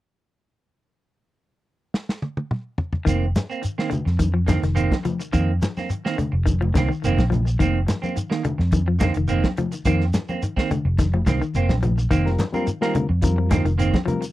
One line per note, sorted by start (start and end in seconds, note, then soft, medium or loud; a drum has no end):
1.94 snare soft
2.09 snare medium
2.22 high tom medium
2.37 high tom medium
2.51 mid tom medium
2.78 floor tom medium
2.93 floor tom medium
3.05 3.32 F1 medium
3.05 3.20 D#3 medium
3.05 3.24 D#3 medium
3.05 3.24 A#3 medium
3.05 3.25 C4 medium
3.05 kick medium
3.05 closed hi-hat medium
3.05 shekere medium
3.36 muted clean electric guitar stroke soft
3.36 snare medium
3.36 closed hi-hat soft
3.36 high conga medium
3.36 shekere medium
3.50 3.62 A#3 soft
3.50 3.62 C4 medium
3.50 shekere soft
3.63 muted clean electric guitar stroke soft
3.63 closed hi-hat medium
3.63 shekere medium
3.78 3.89 D#3 medium
3.78 3.90 A#3 medium
3.78 3.90 C4 medium
3.78 snare medium
3.90 4.05 D3 medium
3.90 muted clean electric guitar stroke soft
3.90 closed hi-hat soft
3.90 low conga medium
3.90 shekere soft
4.05 4.57 F2 medium
4.05 muted clean electric guitar stroke soft
4.05 snare soft
4.19 4.27 D#3 medium
4.19 kick medium
4.19 closed hi-hat medium
4.19 high conga medium
4.19 shekere medium
4.34 4.41 F3 medium
4.34 muted clean electric guitar stroke soft
4.47 4.56 D3 medium
4.47 4.62 D#3 medium
4.47 4.61 A#3 medium
4.47 4.61 C4 medium
4.47 kick medium
4.47 snare medium
4.47 closed hi-hat soft
4.47 high conga medium
4.47 shekere medium
4.62 4.88 F1 medium
4.62 4.78 D#3 medium
4.62 muted clean electric guitar stroke soft
4.62 snare soft
4.62 closed hi-hat soft
4.62 shekere soft
4.75 4.93 D#3 medium
4.75 4.94 A#3 medium
4.75 4.94 C4 medium
4.75 closed hi-hat medium
4.75 shekere medium
4.92 kick medium
4.92 snare medium
4.92 high conga medium
5.04 5.20 F3 medium
5.04 muted clean electric guitar stroke soft
5.04 closed hi-hat soft
5.04 low conga medium
5.04 shekere soft
5.20 muted clean electric guitar stroke soft
5.20 closed hi-hat soft
5.20 shekere medium
5.33 5.59 F2 medium
5.33 5.50 D#3 medium
5.33 5.48 D#3 medium
5.33 5.51 A#3 medium
5.33 5.51 C4 medium
5.33 kick medium
5.33 closed hi-hat medium
5.33 shekere medium
5.62 muted clean electric guitar stroke soft
5.62 snare medium
5.62 closed hi-hat soft
5.62 high conga medium
5.62 shekere medium
5.77 5.90 A#3 soft
5.77 5.89 C4 soft
5.77 snare soft
5.77 high conga medium
5.77 shekere soft
5.90 muted clean electric guitar stroke soft
5.90 closed hi-hat medium
5.90 shekere medium
6.05 6.16 D#3 medium
6.05 6.17 A#3 medium
6.05 6.17 C4 medium
6.05 snare medium
6.17 6.33 D3 medium
6.17 muted clean electric guitar stroke soft
6.17 muted fingered electric bass stroke soft
6.17 closed hi-hat soft
6.17 low conga medium
6.17 shekere soft
6.32 6.70 F1 medium
6.32 muted clean electric guitar stroke soft
6.46 6.54 D#3 medium
6.46 kick medium
6.46 closed hi-hat medium
6.46 high conga medium
6.46 shekere medium
6.61 6.68 F3 medium
6.61 muted clean electric guitar stroke soft
6.61 low conga medium
6.74 6.88 C2 medium
6.74 6.82 D3 medium
6.74 6.90 D#3 medium
6.74 6.90 A#3 medium
6.74 6.90 C4 medium
6.74 kick medium
6.74 snare medium
6.74 closed hi-hat soft
6.74 high conga medium
6.74 shekere medium
6.89 7.04 D#3 medium
6.89 muted fingered electric bass stroke soft
6.89 muted clean electric guitar stroke soft
6.89 shekere soft
7.04 7.17 F1 medium
7.04 7.21 D#3 medium
7.04 7.22 A#3 medium
7.04 7.22 C4 medium
7.04 closed hi-hat medium
7.04 shekere medium
7.18 7.55 A#1 medium
7.18 kick medium
7.18 snare medium
7.18 high conga medium
7.30 7.45 F3 medium
7.30 muted clean electric guitar stroke soft
7.30 closed hi-hat soft
7.30 high conga medium
7.30 low conga medium
7.30 shekere soft
7.47 muted clean electric guitar stroke soft
7.47 shekere medium
7.59 7.85 F1 medium
7.59 7.74 D#3 medium
7.59 7.78 D#3 medium
7.59 7.78 A#3 medium
7.59 7.78 C4 medium
7.59 kick medium
7.59 closed hi-hat medium
7.59 shekere medium
7.88 muted clean electric guitar stroke soft
7.88 snare medium
7.88 closed hi-hat soft
7.88 high conga medium
7.88 shekere medium
8.02 8.16 A#3 soft
8.02 8.16 C4 medium
8.02 high conga medium
8.02 shekere soft
8.17 muted clean electric guitar stroke soft
8.17 closed hi-hat medium
8.17 shekere medium
8.30 8.43 D#3 medium
8.30 8.42 A#3 medium
8.30 muted clean electric guitar stroke medium
8.30 snare medium
8.44 8.60 D3 medium
8.44 muted clean electric guitar stroke soft
8.44 closed hi-hat soft
8.44 low conga medium
8.44 shekere soft
8.58 9.10 F2 medium
8.58 muted clean electric guitar stroke soft
8.58 snare soft
8.72 8.81 D#3 medium
8.72 kick medium
8.72 closed hi-hat medium
8.72 high conga medium
8.72 shekere medium
8.86 8.95 F3 medium
8.86 muted clean electric guitar stroke soft
8.99 9.10 D3 medium
8.99 9.15 D#3 medium
8.99 9.13 A#3 medium
8.99 9.13 C4 medium
8.99 kick medium
8.99 snare medium
8.99 closed hi-hat soft
8.99 high conga medium
8.99 shekere medium
9.14 9.41 F1 medium
9.14 9.32 D#3 medium
9.14 muted clean electric guitar stroke soft
9.14 closed hi-hat soft
9.14 shekere soft
9.28 9.46 D#3 medium
9.28 9.47 A#3 medium
9.28 9.47 C4 medium
9.28 closed hi-hat medium
9.28 shekere medium
9.44 kick medium
9.44 snare medium
9.44 high conga medium
9.57 9.73 F3 medium
9.57 muted clean electric guitar stroke soft
9.57 closed hi-hat medium
9.57 low conga medium
9.57 shekere soft
9.72 muted clean electric guitar stroke soft
9.72 closed hi-hat medium
9.72 shekere medium
9.85 10.11 F2 medium
9.85 10.03 D#3 medium
9.85 10.02 D#3 medium
9.85 10.03 A#3 medium
9.85 10.03 C4 medium
9.85 kick medium
9.85 closed hi-hat medium
9.85 shekere medium
10.00 snare soft
10.13 muted clean electric guitar stroke soft
10.13 snare medium
10.13 closed hi-hat medium
10.13 high conga medium
10.13 shekere medium
10.29 10.42 A#3 soft
10.29 10.42 C4 medium
10.29 high conga medium
10.29 shekere soft
10.42 muted clean electric guitar stroke soft
10.42 closed hi-hat medium
10.42 shekere medium
10.56 10.70 D#3 medium
10.56 10.70 A#3 medium
10.56 10.70 C4 medium
10.56 kick medium
10.56 snare medium
10.71 10.86 D3 medium
10.71 muted clean electric guitar stroke soft
10.71 muted fingered electric bass stroke soft
10.71 closed hi-hat soft
10.71 low conga medium
10.71 shekere soft
10.85 11.22 F1 medium
10.85 muted clean electric guitar stroke soft
10.98 11.07 D#3 medium
10.98 kick medium
10.98 snare soft
10.98 closed hi-hat medium
10.98 high conga medium
10.98 shekere medium
11.13 11.21 F3 medium
11.13 muted clean electric guitar stroke soft
11.13 low conga medium
11.26 11.40 C2 medium
11.26 11.35 D3 medium
11.26 11.41 D#3 medium
11.26 11.41 A#3 medium
11.26 11.41 C4 medium
11.26 kick medium
11.26 snare medium
11.26 closed hi-hat soft
11.26 high conga medium
11.26 shekere medium
11.42 11.56 D#3 medium
11.42 muted clean electric guitar stroke soft
11.42 muted fingered electric bass stroke soft
11.42 shekere soft
11.54 11.68 F1 medium
11.54 11.73 A#3 medium
11.54 11.73 C4 medium
11.54 closed hi-hat medium
11.54 shekere medium
11.69 12.06 A#1 medium
11.69 kick medium
11.69 snare medium
11.69 high conga medium
11.83 11.98 F3 medium
11.83 muted clean electric guitar stroke soft
11.83 closed hi-hat soft
11.83 high conga medium
11.83 low conga medium
11.83 shekere soft
11.98 muted clean electric guitar stroke soft
11.98 shekere medium
12.11 12.36 F1 medium
12.11 12.25 D#3 medium
12.11 12.28 D#3 medium
12.11 12.28 A#3 medium
12.11 12.29 C4 medium
12.11 kick medium
12.11 closed hi-hat medium
12.11 shekere medium
12.25 12.41 G3 medium
12.25 12.41 C4 medium
12.25 12.41 F4 medium
12.25 12.41 A#4 medium
12.25 snare soft
12.38 muted clean electric guitar stroke soft
12.38 snare medium
12.38 closed hi-hat soft
12.38 high conga medium
12.38 shekere medium
12.53 12.69 G3 medium
12.53 12.66 A#3 soft
12.53 12.69 C4 medium
12.53 12.66 C4 medium
12.53 12.69 F4 medium
12.53 12.70 A#4 medium
12.53 high conga medium
12.53 shekere soft
12.67 muted clean electric guitar stroke soft
12.67 closed hi-hat medium
12.67 shekere medium
12.81 12.93 D#3 medium
12.81 13.05 G3 medium
12.81 12.93 A#3 medium
12.81 13.05 C4 medium
12.81 12.94 C4 medium
12.81 13.06 F4 medium
12.81 13.06 A#4 medium
12.81 snare medium
12.95 13.10 D3 medium
12.95 muted clean electric guitar stroke soft
12.95 closed hi-hat soft
12.95 low conga medium
12.95 shekere soft
13.09 13.60 F2 medium
13.09 muted clean electric guitar stroke soft
13.22 13.31 D#3 medium
13.22 13.71 G3 medium
13.22 13.71 C4 medium
13.22 13.71 F4 medium
13.22 13.72 A#4 medium
13.22 kick medium
13.22 closed hi-hat medium
13.22 high conga medium
13.22 shekere medium
13.36 13.45 F3 medium
13.36 muted clean electric guitar stroke soft
13.50 13.59 D3 medium
13.50 13.66 D#3 medium
13.50 13.64 A#3 medium
13.50 13.64 C4 medium
13.50 kick medium
13.50 snare medium
13.50 closed hi-hat medium
13.50 high conga medium
13.50 shekere medium
13.65 13.90 F1 medium
13.65 13.80 D#3 medium
13.65 muted clean electric guitar stroke soft
13.65 closed hi-hat soft
13.65 shekere soft
13.78 13.96 D#3 medium
13.78 13.96 A#3 medium
13.78 13.97 C4 medium
13.78 closed hi-hat medium
13.78 shekere medium
13.94 kick medium
13.94 snare medium
13.94 high conga medium
14.06 14.21 F3 medium
14.06 14.24 G3 medium
14.06 14.24 C4 medium
14.06 14.24 F4 medium
14.06 14.24 A#4 medium
14.06 muted clean electric guitar stroke soft
14.06 closed hi-hat medium
14.06 high conga medium
14.06 low conga medium
14.06 shekere soft
14.21 muted clean electric guitar stroke soft
14.21 closed hi-hat medium
14.21 shekere medium